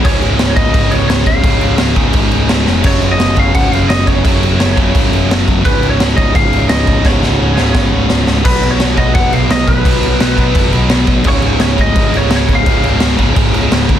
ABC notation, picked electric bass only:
X:1
M:4/4
L:1/8
Q:1/4=171
K:Dbmix
V:1 name="Picked electric bass" clef=bass
D,,, D,,, D,,, D,,, A,,, D,,, D,,, D,,, | D,,, D,,, D,,, D,,, A,,, D,,, D,,, F,,, | G,,, G,,, G,,, G,,, D,,, G,,, G,,, G,,, | G,,, G,,, G,,, G,,, D,,, G,,, G,,, G,,, |
D,,, D,,, D,,, D,,, A,,, D,,, D,,, D,,, | D,,, D,,, D,,, D,,, A,,, D,,, D,,, D,,, | C,, C,, C,, C,, G,,, C,, C,, C,, | C,, C,, C,, C,, G,,, C,, C,, C,, |
D,,, D,,, D,,, D,,, A,,, D,,, D,,, D,,, | D,,, D,,, D,,, D,,, A,,, D,,, D,,, D,,, |]